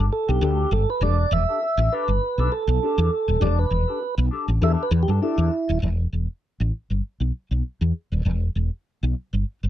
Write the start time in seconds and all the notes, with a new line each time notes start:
0.12 A4, muted clean electric guitar stroke
0.28 B1 D4 G4 A4
0.41 D2 D4 G4 A4
0.71 G1 A4, muted clean electric guitar stroke
0.88 B4, muted clean electric guitar stroke
1.01 E1 D4 G4 A4 D5
1.19 muted clean electric guitar stroke
1.31 E1 E5, muted clean electric guitar stroke
1.49 D4 G4 A4
1.62 muted clean electric guitar stroke
1.77 A1
1.92 D4 G4 A4 B4
2.08 G1, muted clean electric guitar stroke
2.22 muted clean electric guitar stroke
2.38 B1 D4 G4 A4
2.52 A4, muted clean electric guitar stroke
2.67 B1, muted clean electric guitar stroke
2.83 D4 G4 A4
2.98 E2
3.12 muted clean electric guitar stroke
3.28 D#1, muted clean electric guitar stroke
3.40 E1 D4 G4 A4 D5
3.58 B4, muted clean electric guitar stroke
3.71 E1, muted clean electric guitar stroke
3.88 D4 G4 A4
4.01 muted clean electric guitar stroke
4.18 B1
4.31 D4 G4 A4
4.48 A1, muted clean electric guitar stroke
4.61 E2 D4 G4 A4 E5
4.83 B4
4.91 E2, muted clean electric guitar stroke
5.03 G4
5.08 G2 D4 G4 A4
5.22 D4 E4 G4 A4
5.38 E2
5.52 muted clean electric guitar stroke
5.68 D#1, muted clean electric guitar stroke
5.82 E1
6.13 E1
6.60 A1
6.90 G1
7.20 B1
7.51 B1
7.81 E2
8.12 D#1
8.25 E1
8.55 E1
9.03 B1
9.33 G1
9.63 G1